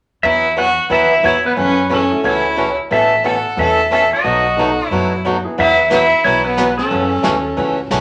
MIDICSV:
0, 0, Header, 1, 7, 480
1, 0, Start_track
1, 0, Tempo, 333704
1, 331, Time_signature, 4, 2, 24, 8
1, 11514, End_track
2, 0, Start_track
2, 0, Title_t, "Electric slide guitar"
2, 0, Program_c, 0, 29
2, 336, Note_on_c, 0, 76, 107
2, 828, Note_off_c, 0, 76, 0
2, 842, Note_on_c, 0, 78, 83
2, 1275, Note_off_c, 0, 78, 0
2, 1330, Note_on_c, 0, 76, 94
2, 1804, Note_on_c, 0, 73, 93
2, 1805, Note_off_c, 0, 76, 0
2, 2068, Note_off_c, 0, 73, 0
2, 2104, Note_on_c, 0, 71, 95
2, 2257, Note_off_c, 0, 71, 0
2, 2283, Note_on_c, 0, 71, 88
2, 2763, Note_off_c, 0, 71, 0
2, 2780, Note_on_c, 0, 69, 76
2, 3240, Note_on_c, 0, 73, 89
2, 3251, Note_off_c, 0, 69, 0
2, 3953, Note_off_c, 0, 73, 0
2, 4206, Note_on_c, 0, 76, 101
2, 4682, Note_off_c, 0, 76, 0
2, 4687, Note_on_c, 0, 78, 96
2, 5161, Note_off_c, 0, 78, 0
2, 5167, Note_on_c, 0, 76, 87
2, 5637, Note_off_c, 0, 76, 0
2, 5654, Note_on_c, 0, 76, 83
2, 5939, Note_off_c, 0, 76, 0
2, 5944, Note_on_c, 0, 75, 86
2, 7009, Note_off_c, 0, 75, 0
2, 7009, Note_on_c, 0, 73, 86
2, 7493, Note_off_c, 0, 73, 0
2, 8054, Note_on_c, 0, 76, 101
2, 8516, Note_off_c, 0, 76, 0
2, 8533, Note_on_c, 0, 76, 95
2, 8961, Note_off_c, 0, 76, 0
2, 8982, Note_on_c, 0, 73, 94
2, 9257, Note_off_c, 0, 73, 0
2, 9271, Note_on_c, 0, 71, 84
2, 9748, Note_on_c, 0, 69, 79
2, 9766, Note_off_c, 0, 71, 0
2, 11130, Note_off_c, 0, 69, 0
2, 11514, End_track
3, 0, Start_track
3, 0, Title_t, "Fiddle"
3, 0, Program_c, 1, 110
3, 352, Note_on_c, 1, 64, 73
3, 789, Note_off_c, 1, 64, 0
3, 824, Note_on_c, 1, 66, 73
3, 1265, Note_off_c, 1, 66, 0
3, 1304, Note_on_c, 1, 64, 73
3, 1746, Note_off_c, 1, 64, 0
3, 1790, Note_on_c, 1, 64, 75
3, 2061, Note_off_c, 1, 64, 0
3, 2094, Note_on_c, 1, 59, 73
3, 2253, Note_off_c, 1, 59, 0
3, 2267, Note_on_c, 1, 61, 82
3, 2708, Note_off_c, 1, 61, 0
3, 2762, Note_on_c, 1, 61, 68
3, 3196, Note_off_c, 1, 61, 0
3, 3262, Note_on_c, 1, 64, 67
3, 3965, Note_off_c, 1, 64, 0
3, 4212, Note_on_c, 1, 69, 72
3, 4642, Note_off_c, 1, 69, 0
3, 4683, Note_on_c, 1, 69, 69
3, 5117, Note_off_c, 1, 69, 0
3, 5180, Note_on_c, 1, 69, 81
3, 5606, Note_off_c, 1, 69, 0
3, 5648, Note_on_c, 1, 69, 79
3, 5912, Note_off_c, 1, 69, 0
3, 5939, Note_on_c, 1, 66, 74
3, 7003, Note_off_c, 1, 66, 0
3, 7003, Note_on_c, 1, 64, 74
3, 7490, Note_off_c, 1, 64, 0
3, 8053, Note_on_c, 1, 64, 80
3, 8482, Note_off_c, 1, 64, 0
3, 8530, Note_on_c, 1, 64, 76
3, 8960, Note_off_c, 1, 64, 0
3, 8988, Note_on_c, 1, 64, 78
3, 9259, Note_off_c, 1, 64, 0
3, 9287, Note_on_c, 1, 59, 71
3, 9726, Note_off_c, 1, 59, 0
3, 9758, Note_on_c, 1, 61, 64
3, 11135, Note_off_c, 1, 61, 0
3, 11514, End_track
4, 0, Start_track
4, 0, Title_t, "Upright piano"
4, 0, Program_c, 2, 0
4, 3020, Note_on_c, 2, 57, 61
4, 3025, Note_on_c, 2, 61, 56
4, 3033, Note_on_c, 2, 64, 60
4, 3039, Note_on_c, 2, 66, 65
4, 3652, Note_off_c, 2, 57, 0
4, 3654, Note_off_c, 2, 61, 0
4, 3658, Note_off_c, 2, 64, 0
4, 3661, Note_off_c, 2, 66, 0
4, 5119, Note_on_c, 2, 59, 51
4, 5125, Note_on_c, 2, 61, 49
4, 5133, Note_on_c, 2, 64, 46
4, 5139, Note_on_c, 2, 69, 64
4, 5397, Note_off_c, 2, 59, 0
4, 5400, Note_off_c, 2, 61, 0
4, 5404, Note_off_c, 2, 64, 0
4, 5407, Note_off_c, 2, 69, 0
4, 6557, Note_on_c, 2, 59, 60
4, 6562, Note_on_c, 2, 63, 54
4, 6564, Note_on_c, 2, 66, 52
4, 6566, Note_on_c, 2, 69, 69
4, 6836, Note_off_c, 2, 59, 0
4, 6838, Note_off_c, 2, 63, 0
4, 6839, Note_off_c, 2, 66, 0
4, 6840, Note_off_c, 2, 69, 0
4, 7818, Note_on_c, 2, 59, 57
4, 7826, Note_on_c, 2, 64, 45
4, 7835, Note_on_c, 2, 66, 51
4, 7836, Note_on_c, 2, 68, 66
4, 8450, Note_off_c, 2, 59, 0
4, 8454, Note_off_c, 2, 64, 0
4, 8459, Note_off_c, 2, 66, 0
4, 8459, Note_off_c, 2, 68, 0
4, 11514, End_track
5, 0, Start_track
5, 0, Title_t, "Steel-string acoustic guitar"
5, 0, Program_c, 3, 25
5, 336, Note_on_c, 3, 52, 54
5, 342, Note_on_c, 3, 54, 50
5, 349, Note_on_c, 3, 59, 49
5, 356, Note_on_c, 3, 66, 47
5, 357, Note_on_c, 3, 71, 56
5, 637, Note_off_c, 3, 52, 0
5, 640, Note_off_c, 3, 54, 0
5, 644, Note_off_c, 3, 59, 0
5, 647, Note_off_c, 3, 66, 0
5, 648, Note_off_c, 3, 71, 0
5, 814, Note_on_c, 3, 52, 60
5, 820, Note_on_c, 3, 54, 71
5, 828, Note_on_c, 3, 59, 60
5, 832, Note_on_c, 3, 71, 71
5, 834, Note_on_c, 3, 66, 71
5, 975, Note_off_c, 3, 52, 0
5, 978, Note_off_c, 3, 54, 0
5, 982, Note_off_c, 3, 59, 0
5, 984, Note_off_c, 3, 71, 0
5, 985, Note_off_c, 3, 66, 0
5, 1293, Note_on_c, 3, 52, 58
5, 1295, Note_on_c, 3, 54, 58
5, 1299, Note_on_c, 3, 59, 65
5, 1306, Note_on_c, 3, 66, 59
5, 1308, Note_on_c, 3, 71, 64
5, 1596, Note_off_c, 3, 52, 0
5, 1597, Note_off_c, 3, 54, 0
5, 1599, Note_off_c, 3, 59, 0
5, 1603, Note_off_c, 3, 66, 0
5, 1604, Note_off_c, 3, 71, 0
5, 1777, Note_on_c, 3, 52, 75
5, 1784, Note_on_c, 3, 54, 62
5, 1786, Note_on_c, 3, 59, 75
5, 1786, Note_on_c, 3, 66, 69
5, 1799, Note_on_c, 3, 71, 72
5, 1937, Note_off_c, 3, 52, 0
5, 1941, Note_off_c, 3, 54, 0
5, 1941, Note_off_c, 3, 59, 0
5, 1941, Note_off_c, 3, 66, 0
5, 1948, Note_off_c, 3, 71, 0
5, 2249, Note_on_c, 3, 49, 52
5, 2250, Note_on_c, 3, 52, 55
5, 2255, Note_on_c, 3, 57, 50
5, 2265, Note_on_c, 3, 61, 55
5, 2267, Note_on_c, 3, 66, 55
5, 2554, Note_off_c, 3, 49, 0
5, 2555, Note_off_c, 3, 52, 0
5, 2557, Note_off_c, 3, 57, 0
5, 2563, Note_off_c, 3, 61, 0
5, 2564, Note_off_c, 3, 66, 0
5, 2726, Note_on_c, 3, 49, 62
5, 2736, Note_on_c, 3, 52, 63
5, 2737, Note_on_c, 3, 57, 64
5, 2742, Note_on_c, 3, 61, 75
5, 2749, Note_on_c, 3, 66, 75
5, 2892, Note_off_c, 3, 49, 0
5, 2897, Note_off_c, 3, 52, 0
5, 2897, Note_off_c, 3, 57, 0
5, 2900, Note_off_c, 3, 61, 0
5, 2903, Note_off_c, 3, 66, 0
5, 3215, Note_on_c, 3, 49, 58
5, 3223, Note_on_c, 3, 57, 62
5, 3226, Note_on_c, 3, 61, 57
5, 3227, Note_on_c, 3, 52, 58
5, 3233, Note_on_c, 3, 66, 65
5, 3518, Note_off_c, 3, 49, 0
5, 3522, Note_off_c, 3, 57, 0
5, 3524, Note_off_c, 3, 52, 0
5, 3524, Note_off_c, 3, 61, 0
5, 3527, Note_off_c, 3, 66, 0
5, 3687, Note_on_c, 3, 49, 68
5, 3697, Note_on_c, 3, 52, 65
5, 3704, Note_on_c, 3, 57, 69
5, 3712, Note_on_c, 3, 61, 76
5, 3714, Note_on_c, 3, 66, 81
5, 3853, Note_off_c, 3, 49, 0
5, 3858, Note_off_c, 3, 52, 0
5, 3861, Note_off_c, 3, 57, 0
5, 3865, Note_off_c, 3, 61, 0
5, 3866, Note_off_c, 3, 66, 0
5, 4180, Note_on_c, 3, 47, 53
5, 4186, Note_on_c, 3, 52, 56
5, 4194, Note_on_c, 3, 57, 55
5, 4197, Note_on_c, 3, 69, 60
5, 4202, Note_on_c, 3, 61, 53
5, 4481, Note_off_c, 3, 47, 0
5, 4484, Note_off_c, 3, 52, 0
5, 4488, Note_off_c, 3, 57, 0
5, 4489, Note_off_c, 3, 69, 0
5, 4492, Note_off_c, 3, 61, 0
5, 4662, Note_on_c, 3, 47, 75
5, 4665, Note_on_c, 3, 52, 69
5, 4670, Note_on_c, 3, 57, 65
5, 4676, Note_on_c, 3, 61, 77
5, 4680, Note_on_c, 3, 69, 71
5, 4821, Note_off_c, 3, 47, 0
5, 4822, Note_off_c, 3, 52, 0
5, 4825, Note_off_c, 3, 57, 0
5, 4827, Note_off_c, 3, 61, 0
5, 4829, Note_off_c, 3, 69, 0
5, 5150, Note_on_c, 3, 47, 54
5, 5151, Note_on_c, 3, 52, 54
5, 5161, Note_on_c, 3, 57, 61
5, 5162, Note_on_c, 3, 61, 69
5, 5163, Note_on_c, 3, 69, 62
5, 5446, Note_off_c, 3, 47, 0
5, 5446, Note_off_c, 3, 52, 0
5, 5451, Note_off_c, 3, 57, 0
5, 5452, Note_off_c, 3, 61, 0
5, 5452, Note_off_c, 3, 69, 0
5, 5619, Note_on_c, 3, 47, 63
5, 5627, Note_on_c, 3, 52, 62
5, 5633, Note_on_c, 3, 57, 66
5, 5634, Note_on_c, 3, 61, 82
5, 5639, Note_on_c, 3, 69, 79
5, 5779, Note_off_c, 3, 47, 0
5, 5783, Note_off_c, 3, 52, 0
5, 5786, Note_off_c, 3, 57, 0
5, 5787, Note_off_c, 3, 61, 0
5, 5789, Note_off_c, 3, 69, 0
5, 6099, Note_on_c, 3, 47, 50
5, 6099, Note_on_c, 3, 54, 48
5, 6108, Note_on_c, 3, 57, 53
5, 6108, Note_on_c, 3, 63, 48
5, 6120, Note_on_c, 3, 66, 52
5, 6401, Note_off_c, 3, 47, 0
5, 6401, Note_off_c, 3, 54, 0
5, 6405, Note_off_c, 3, 57, 0
5, 6405, Note_off_c, 3, 63, 0
5, 6411, Note_off_c, 3, 66, 0
5, 6593, Note_on_c, 3, 47, 61
5, 6596, Note_on_c, 3, 54, 63
5, 6605, Note_on_c, 3, 57, 67
5, 6605, Note_on_c, 3, 63, 81
5, 6611, Note_on_c, 3, 66, 81
5, 6746, Note_off_c, 3, 47, 0
5, 6748, Note_off_c, 3, 54, 0
5, 6752, Note_off_c, 3, 57, 0
5, 6752, Note_off_c, 3, 63, 0
5, 6755, Note_off_c, 3, 66, 0
5, 7071, Note_on_c, 3, 47, 58
5, 7079, Note_on_c, 3, 54, 62
5, 7080, Note_on_c, 3, 57, 61
5, 7083, Note_on_c, 3, 63, 60
5, 7086, Note_on_c, 3, 66, 69
5, 7366, Note_off_c, 3, 47, 0
5, 7371, Note_off_c, 3, 54, 0
5, 7371, Note_off_c, 3, 57, 0
5, 7372, Note_off_c, 3, 63, 0
5, 7374, Note_off_c, 3, 66, 0
5, 7548, Note_on_c, 3, 47, 67
5, 7555, Note_on_c, 3, 54, 69
5, 7561, Note_on_c, 3, 57, 66
5, 7563, Note_on_c, 3, 63, 65
5, 7571, Note_on_c, 3, 66, 80
5, 7703, Note_off_c, 3, 47, 0
5, 7707, Note_off_c, 3, 54, 0
5, 7710, Note_off_c, 3, 57, 0
5, 7711, Note_off_c, 3, 63, 0
5, 7715, Note_off_c, 3, 66, 0
5, 8025, Note_on_c, 3, 52, 50
5, 8026, Note_on_c, 3, 54, 55
5, 8036, Note_on_c, 3, 59, 50
5, 8036, Note_on_c, 3, 66, 60
5, 8043, Note_on_c, 3, 71, 57
5, 8323, Note_off_c, 3, 52, 0
5, 8323, Note_off_c, 3, 54, 0
5, 8328, Note_off_c, 3, 59, 0
5, 8328, Note_off_c, 3, 66, 0
5, 8332, Note_off_c, 3, 71, 0
5, 8485, Note_on_c, 3, 52, 75
5, 8494, Note_on_c, 3, 59, 75
5, 8495, Note_on_c, 3, 54, 71
5, 8506, Note_on_c, 3, 66, 70
5, 8509, Note_on_c, 3, 71, 78
5, 8651, Note_off_c, 3, 52, 0
5, 8656, Note_off_c, 3, 54, 0
5, 8656, Note_off_c, 3, 59, 0
5, 8662, Note_off_c, 3, 66, 0
5, 8663, Note_off_c, 3, 71, 0
5, 8988, Note_on_c, 3, 52, 55
5, 8989, Note_on_c, 3, 54, 63
5, 8992, Note_on_c, 3, 59, 61
5, 9004, Note_on_c, 3, 66, 64
5, 9004, Note_on_c, 3, 71, 67
5, 9284, Note_off_c, 3, 52, 0
5, 9284, Note_off_c, 3, 54, 0
5, 9286, Note_off_c, 3, 59, 0
5, 9292, Note_off_c, 3, 66, 0
5, 9292, Note_off_c, 3, 71, 0
5, 9453, Note_on_c, 3, 52, 73
5, 9459, Note_on_c, 3, 54, 70
5, 9461, Note_on_c, 3, 59, 75
5, 9463, Note_on_c, 3, 66, 68
5, 9470, Note_on_c, 3, 71, 83
5, 9615, Note_off_c, 3, 52, 0
5, 9618, Note_off_c, 3, 54, 0
5, 9618, Note_off_c, 3, 59, 0
5, 9620, Note_off_c, 3, 66, 0
5, 9623, Note_off_c, 3, 71, 0
5, 9930, Note_on_c, 3, 49, 51
5, 9936, Note_on_c, 3, 52, 57
5, 9937, Note_on_c, 3, 57, 51
5, 9939, Note_on_c, 3, 61, 56
5, 9946, Note_on_c, 3, 66, 58
5, 10234, Note_off_c, 3, 49, 0
5, 10237, Note_off_c, 3, 52, 0
5, 10238, Note_off_c, 3, 57, 0
5, 10238, Note_off_c, 3, 61, 0
5, 10242, Note_off_c, 3, 66, 0
5, 10395, Note_on_c, 3, 49, 60
5, 10405, Note_on_c, 3, 52, 74
5, 10406, Note_on_c, 3, 57, 77
5, 10412, Note_on_c, 3, 61, 73
5, 10419, Note_on_c, 3, 66, 81
5, 10565, Note_off_c, 3, 49, 0
5, 10570, Note_off_c, 3, 52, 0
5, 10570, Note_off_c, 3, 57, 0
5, 10573, Note_off_c, 3, 61, 0
5, 10577, Note_off_c, 3, 66, 0
5, 10886, Note_on_c, 3, 52, 54
5, 10887, Note_on_c, 3, 49, 53
5, 10895, Note_on_c, 3, 57, 66
5, 10903, Note_on_c, 3, 61, 63
5, 10905, Note_on_c, 3, 66, 65
5, 11190, Note_off_c, 3, 52, 0
5, 11191, Note_off_c, 3, 49, 0
5, 11195, Note_off_c, 3, 57, 0
5, 11199, Note_off_c, 3, 61, 0
5, 11200, Note_off_c, 3, 66, 0
5, 11373, Note_on_c, 3, 52, 67
5, 11375, Note_on_c, 3, 49, 64
5, 11379, Note_on_c, 3, 57, 74
5, 11382, Note_on_c, 3, 61, 72
5, 11392, Note_on_c, 3, 66, 91
5, 11514, Note_off_c, 3, 49, 0
5, 11514, Note_off_c, 3, 52, 0
5, 11514, Note_off_c, 3, 57, 0
5, 11514, Note_off_c, 3, 61, 0
5, 11514, Note_off_c, 3, 66, 0
5, 11514, End_track
6, 0, Start_track
6, 0, Title_t, "Upright bass"
6, 0, Program_c, 4, 32
6, 334, Note_on_c, 4, 40, 87
6, 1102, Note_off_c, 4, 40, 0
6, 1290, Note_on_c, 4, 39, 80
6, 1700, Note_off_c, 4, 39, 0
6, 1771, Note_on_c, 4, 40, 75
6, 2180, Note_off_c, 4, 40, 0
6, 2259, Note_on_c, 4, 42, 86
6, 3026, Note_off_c, 4, 42, 0
6, 3223, Note_on_c, 4, 37, 81
6, 3988, Note_off_c, 4, 37, 0
6, 4183, Note_on_c, 4, 33, 91
6, 4948, Note_off_c, 4, 33, 0
6, 5137, Note_on_c, 4, 40, 78
6, 5905, Note_off_c, 4, 40, 0
6, 6103, Note_on_c, 4, 35, 87
6, 6869, Note_off_c, 4, 35, 0
6, 7059, Note_on_c, 4, 42, 67
6, 7825, Note_off_c, 4, 42, 0
6, 8029, Note_on_c, 4, 40, 85
6, 8790, Note_off_c, 4, 40, 0
6, 8986, Note_on_c, 4, 35, 74
6, 9748, Note_off_c, 4, 35, 0
6, 9937, Note_on_c, 4, 42, 79
6, 10319, Note_off_c, 4, 42, 0
6, 10411, Note_on_c, 4, 39, 93
6, 10818, Note_off_c, 4, 39, 0
6, 10894, Note_on_c, 4, 37, 79
6, 11300, Note_off_c, 4, 37, 0
6, 11370, Note_on_c, 4, 35, 81
6, 11514, Note_off_c, 4, 35, 0
6, 11514, End_track
7, 0, Start_track
7, 0, Title_t, "Drums"
7, 8026, Note_on_c, 9, 25, 43
7, 8496, Note_on_c, 9, 38, 53
7, 8496, Note_on_c, 9, 44, 55
7, 8640, Note_off_c, 9, 38, 0
7, 8640, Note_off_c, 9, 44, 0
7, 8975, Note_off_c, 9, 25, 0
7, 8975, Note_on_c, 9, 25, 50
7, 9458, Note_on_c, 9, 38, 58
7, 9458, Note_on_c, 9, 44, 53
7, 9602, Note_off_c, 9, 38, 0
7, 9602, Note_off_c, 9, 44, 0
7, 9761, Note_on_c, 9, 38, 33
7, 9905, Note_off_c, 9, 38, 0
7, 9937, Note_off_c, 9, 25, 0
7, 9937, Note_on_c, 9, 25, 46
7, 10408, Note_on_c, 9, 38, 60
7, 10408, Note_on_c, 9, 44, 46
7, 10552, Note_off_c, 9, 38, 0
7, 10552, Note_off_c, 9, 44, 0
7, 10890, Note_off_c, 9, 25, 0
7, 10890, Note_on_c, 9, 25, 41
7, 11374, Note_on_c, 9, 38, 61
7, 11374, Note_on_c, 9, 44, 52
7, 11514, Note_off_c, 9, 25, 0
7, 11514, Note_off_c, 9, 38, 0
7, 11514, Note_off_c, 9, 44, 0
7, 11514, End_track
0, 0, End_of_file